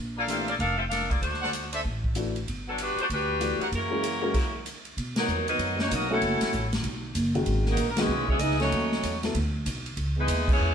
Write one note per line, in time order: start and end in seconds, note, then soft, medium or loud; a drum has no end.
0.00 0.56 A#1 medium
0.16 0.23 A#3 medium
0.16 0.57 D4 medium
0.16 0.23 F4 medium
0.16 0.57 A4 medium
0.16 0.23 A4 medium
0.16 0.57 A#4 medium
0.16 0.23 D5 medium
0.16 0.57 F5 medium
0.27 0.45 E3 medium
0.27 0.46 A3 soft
0.27 0.47 C4 medium
0.27 0.46 D4 soft
0.27 0.47 F4 medium
0.27 0.46 G4 medium
0.27 0.47 A4 medium
0.27 0.47 E5 medium
0.27 hi-hat pedal medium
0.27 ride medium
0.48 0.54 A#3 medium
0.48 0.53 F4 medium
0.48 0.54 A4 medium
0.48 0.54 D5 medium
0.48 ride soft
0.59 1.19 F1 medium
0.59 0.78 D4 medium
0.59 0.77 A4 medium
0.59 0.78 A#4 medium
0.59 0.78 F5 loud
0.59 kick soft
0.59 ride medium
0.77 0.83 C4 medium
0.77 0.83 F4 medium
0.77 0.83 A4 medium
0.77 0.83 E5 medium
0.89 1.09 D4 medium
0.89 1.09 A4 medium
0.89 1.09 A#4 medium
0.89 1.09 F5 medium
0.89 snare soft
0.89 hi-hat pedal medium
0.89 ride medium
1.10 1.21 A#3 medium
1.10 1.21 F4 medium
1.10 1.21 A4 medium
1.10 1.21 D5 medium
1.10 kick medium
1.10 ride soft
1.21 1.82 D2 medium
1.21 1.69 A3 medium
1.21 1.69 D4 medium
1.21 1.69 F#4 medium
1.21 1.69 C5 medium
1.21 kick soft
1.21 ride medium
1.34 snare soft
1.41 1.50 D4 medium
1.41 1.50 A4 medium
1.41 1.49 C5 medium
1.41 1.49 F#5 loud
1.41 snare soft
1.53 hi-hat pedal medium
1.53 ride medium
1.73 1.81 D4 medium
1.73 1.81 A4 medium
1.73 1.81 C5 medium
1.73 1.81 E5 medium
1.73 ride medium
1.85 2.44 A1 medium
1.85 kick soft
2.04 kick medium
2.15 2.33 E3 medium
2.15 2.33 A3 medium
2.15 2.33 D4 medium
2.15 2.34 F#4 medium
2.15 hi-hat pedal medium
2.15 ride medium
2.36 ride soft
2.47 2.94 G1 medium
2.47 kick soft
2.47 ride medium
2.68 2.78 F#3 medium
2.68 2.78 B3 medium
2.68 2.78 D4 medium
2.68 2.78 A4 medium
2.78 2.99 G3 medium
2.78 3.00 D4 medium
2.78 2.99 F#4 medium
2.78 2.99 B4 loud
2.78 hi-hat pedal medium
2.78 ride medium
2.96 muted upright bass stroke soft
2.96 ride soft
3.01 3.06 A3 medium
3.01 3.06 D4 medium
3.01 3.06 F#4 medium
3.01 3.06 C5 loud
3.10 3.57 D2 medium
3.10 3.70 G3 medium
3.10 3.69 D4 medium
3.10 3.70 F#4 medium
3.10 3.70 B4 loud
3.10 kick soft
3.10 ride medium
3.40 3.58 E3 medium
3.40 3.58 A3 soft
3.40 3.58 D4 soft
3.40 3.58 F#4 medium
3.40 hi-hat pedal medium
3.40 ride medium
3.59 3.68 E4 medium
3.59 3.68 A#4 medium
3.59 3.68 C#5 medium
3.59 3.68 F#5 medium
3.59 muted upright bass stroke soft
3.59 ride soft
3.72 4.31 F#2 medium
3.72 4.62 C#3 medium
3.72 4.63 E3 medium
3.72 4.63 A#3 medium
3.72 4.63 A#4 medium
3.72 kick soft
3.72 ride medium
3.76 4.64 F#3 medium
3.76 4.63 C#4 medium
3.76 4.64 E4 medium
3.91 4.02 G#3 medium
3.91 4.02 C#4 medium
3.91 4.02 F#4 soft
3.91 4.02 A#4 medium
4.04 hi-hat pedal medium
4.04 ride medium
4.22 4.33 G#3 medium
4.22 4.33 C#4 medium
4.22 4.33 F#4 medium
4.22 4.33 A#4 medium
4.34 kick medium
4.34 crash medium
4.34 ride medium
4.66 hi-hat pedal medium
4.66 ride medium
4.85 ride soft
4.97 5.27 B2 medium
4.97 kick soft
4.97 ride medium
5.16 5.46 D#3 medium
5.16 5.45 F#3 medium
5.16 5.46 F#3 medium
5.16 5.46 B3 medium
5.16 5.46 D#4 medium
5.16 5.45 A#4 medium
5.16 5.46 A#4 medium
5.16 snare medium
5.16 ride medium
5.28 5.58 E2 medium
5.28 hi-hat pedal medium
5.48 5.78 D#3 medium
5.48 5.77 F#3 medium
5.48 5.78 F#3 medium
5.48 5.78 B3 medium
5.48 5.77 D#4 medium
5.48 5.77 A#4 medium
5.48 5.77 B4 medium
5.48 ride soft
5.59 5.89 F#2 medium
5.59 kick soft
5.59 ride medium
5.78 5.91 A#3 medium
5.78 5.90 C#4 medium
5.78 5.91 D#4 medium
5.78 5.92 F#4 medium
5.78 5.92 C#5 medium
5.78 snare medium
5.90 6.21 B1 medium
5.90 6.10 F#3 medium
5.90 6.10 A#3 medium
5.90 6.12 B3 medium
5.90 6.10 D#4 medium
5.90 kick soft
5.90 hi-hat pedal medium
5.90 ride medium
5.94 6.12 F#4 medium
5.94 6.12 A#4 medium
5.94 6.12 D#5 medium
6.09 6.51 F#3 medium
6.09 6.68 A3 medium
6.09 6.51 B3 soft
6.09 6.68 C#4 medium
6.09 6.51 E4 medium
6.09 6.69 F#4 medium
6.09 6.51 A4 medium
6.09 6.70 A4 medium
6.09 6.70 F#5 medium
6.14 6.71 E4 medium
6.14 6.70 C#5 medium
6.22 6.40 F#1 medium
6.22 kick soft
6.22 ride medium
6.40 muted upright bass stroke soft
6.40 snare medium
6.40 ride medium
6.52 6.83 A1 medium
6.52 kick soft
6.52 hi-hat pedal medium
6.73 snare medium
6.73 ride medium
6.84 7.14 B1 medium
6.84 kick soft
6.84 ride medium
7.15 7.46 F#1 medium
7.15 kick soft
7.15 hi-hat pedal medium
7.15 ride medium
7.34 7.75 D#3 medium
7.34 7.76 G#3 medium
7.34 7.76 C#4 medium
7.34 7.76 F#4 medium
7.34 ride soft
7.46 7.77 G#1 medium
7.46 kick soft
7.46 ride medium
7.66 7.88 A#3 medium
7.66 snare soft
7.70 7.90 F#3 medium
7.70 7.90 B3 medium
7.70 7.90 D#4 medium
7.70 7.88 A#4 medium
7.77 8.07 A#1 medium
7.77 kick soft
7.77 hi-hat pedal medium
7.77 ride medium
7.90 7.98 A#4 medium
7.97 8.27 C#3 medium
7.97 8.08 D#3 medium
7.97 8.27 G#3 medium
7.97 8.29 G#3 medium
7.97 8.08 G#3 medium
7.97 8.29 B3 medium
7.97 8.08 C#4 medium
7.97 8.30 C#4 medium
7.97 8.28 E4 medium
7.97 8.08 F#4 medium
7.97 8.29 B4 medium
7.97 snare medium
7.97 ride medium
8.07 8.39 B1 medium
8.28 8.39 C#3 medium
8.28 8.39 G#3 medium
8.28 8.39 B3 medium
8.28 8.39 C#4 medium
8.28 8.39 E4 medium
8.28 8.38 G#4 medium
8.28 8.40 C#5 medium
8.28 kick medium
8.39 8.70 C#2 medium
8.39 8.60 B3 medium
8.39 8.60 D#4 medium
8.39 8.60 E4 medium
8.39 8.59 G#4 medium
8.39 8.59 D#5 medium
8.39 hi-hat pedal medium
8.39 ride medium
8.51 snare soft
8.59 9.18 F#3 medium
8.59 9.18 A3 medium
8.59 9.19 A3 medium
8.59 9.18 C#4 medium
8.59 9.19 D#4 medium
8.59 9.19 F#4 medium
8.59 9.19 C#5 medium
8.59 snare soft
8.59 ride soft
8.72 9.02 D#2 medium
8.72 kick soft
8.72 ride medium
8.92 snare soft
9.03 9.34 E2 medium
9.03 kick soft
9.03 hi-hat pedal medium
9.03 ride medium
9.23 9.33 F#3 medium
9.23 9.34 B3 medium
9.23 9.34 E4 medium
9.23 9.34 A4 medium
9.23 snare soft
9.23 ride soft
9.35 9.65 D2 medium
9.35 kick soft
9.35 ride medium
9.66 9.96 B1 medium
9.66 kick soft
9.66 hi-hat pedal medium
9.66 ride medium
9.86 ride soft
9.97 10.27 C#2 medium
9.97 kick soft
9.97 ride medium
10.16 10.45 E3 medium
10.16 10.45 G#3 medium
10.16 10.47 G#3 medium
10.16 10.45 B3 medium
10.16 10.47 D#4 medium
10.16 10.47 E4 medium
10.16 10.47 B4 medium
10.28 10.58 D#2 medium
10.28 kick soft
10.28 hi-hat pedal medium
10.28 ride medium
10.48 10.74 E3 medium
10.48 10.74 G#3 medium
10.48 10.74 C#4 medium
10.48 10.74 E4 medium
10.48 10.74 G#4 medium
10.48 kick medium
10.48 crash medium
10.52 10.74 B3 medium
10.52 10.74 C#5 loud
10.60 10.74 E2 medium